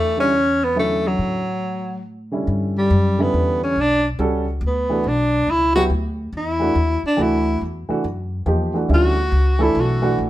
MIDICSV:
0, 0, Header, 1, 5, 480
1, 0, Start_track
1, 0, Tempo, 428266
1, 1329, Time_signature, 3, 2, 24, 8
1, 11543, End_track
2, 0, Start_track
2, 0, Title_t, "Tenor saxophone"
2, 0, Program_c, 0, 66
2, 0, Note_on_c, 0, 57, 93
2, 195, Note_off_c, 0, 57, 0
2, 224, Note_on_c, 0, 61, 81
2, 717, Note_on_c, 0, 59, 72
2, 733, Note_off_c, 0, 61, 0
2, 867, Note_off_c, 0, 59, 0
2, 887, Note_on_c, 0, 57, 82
2, 1201, Note_on_c, 0, 54, 68
2, 1218, Note_off_c, 0, 57, 0
2, 2312, Note_off_c, 0, 54, 0
2, 3117, Note_on_c, 0, 55, 72
2, 3609, Note_on_c, 0, 59, 69
2, 3625, Note_off_c, 0, 55, 0
2, 4066, Note_off_c, 0, 59, 0
2, 4077, Note_on_c, 0, 61, 81
2, 4265, Note_on_c, 0, 62, 89
2, 4282, Note_off_c, 0, 61, 0
2, 4550, Note_off_c, 0, 62, 0
2, 5233, Note_on_c, 0, 59, 64
2, 5693, Note_on_c, 0, 62, 75
2, 5710, Note_off_c, 0, 59, 0
2, 6169, Note_on_c, 0, 64, 85
2, 6186, Note_off_c, 0, 62, 0
2, 6443, Note_off_c, 0, 64, 0
2, 6450, Note_on_c, 0, 66, 88
2, 6549, Note_off_c, 0, 66, 0
2, 7140, Note_on_c, 0, 64, 83
2, 7862, Note_off_c, 0, 64, 0
2, 7920, Note_on_c, 0, 62, 73
2, 8096, Note_on_c, 0, 64, 80
2, 8113, Note_off_c, 0, 62, 0
2, 8554, Note_off_c, 0, 64, 0
2, 10018, Note_on_c, 0, 66, 93
2, 10793, Note_on_c, 0, 64, 76
2, 10810, Note_off_c, 0, 66, 0
2, 10990, Note_on_c, 0, 66, 77
2, 11007, Note_off_c, 0, 64, 0
2, 11439, Note_off_c, 0, 66, 0
2, 11543, End_track
3, 0, Start_track
3, 0, Title_t, "Grand piano"
3, 0, Program_c, 1, 0
3, 0, Note_on_c, 1, 52, 64
3, 0, Note_on_c, 1, 57, 53
3, 0, Note_on_c, 1, 62, 53
3, 0, Note_on_c, 1, 66, 62
3, 137, Note_off_c, 1, 52, 0
3, 141, Note_off_c, 1, 57, 0
3, 142, Note_off_c, 1, 62, 0
3, 145, Note_off_c, 1, 66, 0
3, 190, Note_on_c, 1, 50, 56
3, 204, Note_on_c, 1, 55, 48
3, 213, Note_on_c, 1, 61, 50
3, 217, Note_on_c, 1, 64, 57
3, 347, Note_off_c, 1, 50, 0
3, 354, Note_off_c, 1, 55, 0
3, 358, Note_off_c, 1, 61, 0
3, 360, Note_off_c, 1, 64, 0
3, 840, Note_on_c, 1, 50, 50
3, 852, Note_on_c, 1, 54, 52
3, 859, Note_on_c, 1, 61, 48
3, 862, Note_on_c, 1, 64, 65
3, 1574, Note_off_c, 1, 50, 0
3, 1580, Note_off_c, 1, 54, 0
3, 1584, Note_off_c, 1, 61, 0
3, 1585, Note_off_c, 1, 64, 0
3, 2594, Note_on_c, 1, 50, 52
3, 2602, Note_on_c, 1, 55, 49
3, 2604, Note_on_c, 1, 61, 50
3, 2614, Note_on_c, 1, 64, 55
3, 3214, Note_off_c, 1, 50, 0
3, 3218, Note_off_c, 1, 55, 0
3, 3219, Note_off_c, 1, 61, 0
3, 3224, Note_off_c, 1, 64, 0
3, 3562, Note_on_c, 1, 50, 59
3, 3573, Note_on_c, 1, 55, 56
3, 3578, Note_on_c, 1, 61, 53
3, 3588, Note_on_c, 1, 64, 63
3, 4178, Note_off_c, 1, 50, 0
3, 4184, Note_off_c, 1, 55, 0
3, 4187, Note_off_c, 1, 61, 0
3, 4191, Note_off_c, 1, 64, 0
3, 4694, Note_on_c, 1, 55, 67
3, 4698, Note_on_c, 1, 61, 60
3, 4704, Note_on_c, 1, 66, 57
3, 4710, Note_on_c, 1, 69, 71
3, 4974, Note_off_c, 1, 55, 0
3, 4975, Note_off_c, 1, 61, 0
3, 4978, Note_off_c, 1, 66, 0
3, 4982, Note_off_c, 1, 69, 0
3, 5486, Note_on_c, 1, 52, 56
3, 5496, Note_on_c, 1, 57, 51
3, 5498, Note_on_c, 1, 62, 53
3, 5506, Note_on_c, 1, 66, 60
3, 5637, Note_off_c, 1, 52, 0
3, 5642, Note_off_c, 1, 57, 0
3, 5643, Note_off_c, 1, 62, 0
3, 5647, Note_off_c, 1, 66, 0
3, 6449, Note_on_c, 1, 54, 65
3, 6455, Note_on_c, 1, 59, 64
3, 6461, Note_on_c, 1, 64, 67
3, 6465, Note_on_c, 1, 67, 75
3, 6599, Note_off_c, 1, 54, 0
3, 6602, Note_off_c, 1, 59, 0
3, 6605, Note_off_c, 1, 64, 0
3, 6607, Note_off_c, 1, 67, 0
3, 7392, Note_on_c, 1, 52, 58
3, 7404, Note_on_c, 1, 57, 51
3, 7411, Note_on_c, 1, 62, 59
3, 7414, Note_on_c, 1, 66, 64
3, 7550, Note_off_c, 1, 52, 0
3, 7556, Note_off_c, 1, 57, 0
3, 7560, Note_off_c, 1, 62, 0
3, 7561, Note_off_c, 1, 66, 0
3, 8034, Note_on_c, 1, 52, 62
3, 8043, Note_on_c, 1, 57, 56
3, 8050, Note_on_c, 1, 62, 52
3, 8060, Note_on_c, 1, 66, 74
3, 8523, Note_off_c, 1, 52, 0
3, 8527, Note_off_c, 1, 57, 0
3, 8531, Note_off_c, 1, 62, 0
3, 8536, Note_off_c, 1, 66, 0
3, 8840, Note_on_c, 1, 52, 59
3, 8843, Note_on_c, 1, 57, 53
3, 8857, Note_on_c, 1, 62, 53
3, 8859, Note_on_c, 1, 66, 70
3, 8994, Note_off_c, 1, 52, 0
3, 8995, Note_off_c, 1, 57, 0
3, 9002, Note_off_c, 1, 62, 0
3, 9003, Note_off_c, 1, 66, 0
3, 9481, Note_on_c, 1, 53, 59
3, 9486, Note_on_c, 1, 58, 49
3, 9491, Note_on_c, 1, 63, 52
3, 9502, Note_on_c, 1, 67, 67
3, 9766, Note_off_c, 1, 53, 0
3, 9768, Note_off_c, 1, 58, 0
3, 9771, Note_off_c, 1, 63, 0
3, 9777, Note_off_c, 1, 67, 0
3, 9794, Note_on_c, 1, 52, 53
3, 9800, Note_on_c, 1, 57, 50
3, 9806, Note_on_c, 1, 62, 54
3, 9815, Note_on_c, 1, 66, 58
3, 9955, Note_on_c, 1, 50, 63
3, 9958, Note_on_c, 1, 55, 59
3, 9965, Note_on_c, 1, 61, 58
3, 9976, Note_on_c, 1, 64, 72
3, 10215, Note_off_c, 1, 52, 0
3, 10218, Note_off_c, 1, 57, 0
3, 10221, Note_off_c, 1, 62, 0
3, 10226, Note_off_c, 1, 66, 0
3, 10243, Note_off_c, 1, 50, 0
3, 10244, Note_off_c, 1, 55, 0
3, 10248, Note_off_c, 1, 61, 0
3, 10253, Note_off_c, 1, 64, 0
3, 10747, Note_on_c, 1, 52, 67
3, 10750, Note_on_c, 1, 57, 64
3, 10762, Note_on_c, 1, 62, 60
3, 10767, Note_on_c, 1, 69, 80
3, 11202, Note_off_c, 1, 52, 0
3, 11204, Note_off_c, 1, 57, 0
3, 11210, Note_off_c, 1, 62, 0
3, 11212, Note_off_c, 1, 69, 0
3, 11230, Note_on_c, 1, 52, 67
3, 11233, Note_on_c, 1, 57, 61
3, 11239, Note_on_c, 1, 62, 65
3, 11243, Note_on_c, 1, 66, 76
3, 11543, Note_off_c, 1, 52, 0
3, 11543, Note_off_c, 1, 57, 0
3, 11543, Note_off_c, 1, 62, 0
3, 11543, Note_off_c, 1, 66, 0
3, 11543, End_track
4, 0, Start_track
4, 0, Title_t, "Upright bass"
4, 0, Program_c, 2, 32
4, 0, Note_on_c, 2, 40, 74
4, 1285, Note_off_c, 2, 40, 0
4, 1328, Note_on_c, 2, 45, 71
4, 2726, Note_off_c, 2, 45, 0
4, 2771, Note_on_c, 2, 43, 75
4, 3237, Note_off_c, 2, 43, 0
4, 3254, Note_on_c, 2, 42, 93
4, 3719, Note_off_c, 2, 42, 0
4, 3740, Note_on_c, 2, 40, 80
4, 4202, Note_off_c, 2, 40, 0
4, 4212, Note_on_c, 2, 35, 74
4, 4678, Note_off_c, 2, 35, 0
4, 4692, Note_on_c, 2, 37, 88
4, 5158, Note_off_c, 2, 37, 0
4, 5164, Note_on_c, 2, 38, 90
4, 5634, Note_off_c, 2, 38, 0
4, 5649, Note_on_c, 2, 35, 82
4, 6117, Note_off_c, 2, 35, 0
4, 6128, Note_on_c, 2, 37, 81
4, 6596, Note_off_c, 2, 37, 0
4, 6608, Note_on_c, 2, 38, 84
4, 7076, Note_off_c, 2, 38, 0
4, 7089, Note_on_c, 2, 40, 79
4, 7557, Note_off_c, 2, 40, 0
4, 7567, Note_on_c, 2, 39, 88
4, 7859, Note_off_c, 2, 39, 0
4, 8048, Note_on_c, 2, 38, 85
4, 8516, Note_off_c, 2, 38, 0
4, 8533, Note_on_c, 2, 40, 75
4, 8822, Note_off_c, 2, 40, 0
4, 9014, Note_on_c, 2, 42, 88
4, 9475, Note_off_c, 2, 42, 0
4, 9482, Note_on_c, 2, 40, 83
4, 9952, Note_off_c, 2, 40, 0
4, 9967, Note_on_c, 2, 38, 78
4, 10434, Note_off_c, 2, 38, 0
4, 10444, Note_on_c, 2, 37, 93
4, 10912, Note_off_c, 2, 37, 0
4, 10927, Note_on_c, 2, 35, 89
4, 11393, Note_off_c, 2, 35, 0
4, 11413, Note_on_c, 2, 33, 76
4, 11543, Note_off_c, 2, 33, 0
4, 11543, End_track
5, 0, Start_track
5, 0, Title_t, "Muted upright bass strokes"
5, 7879, Note_on_c, 9, 29, 32
5, 7991, Note_off_c, 9, 29, 0
5, 8841, Note_on_c, 9, 29, 35
5, 8953, Note_off_c, 9, 29, 0
5, 11543, End_track
0, 0, End_of_file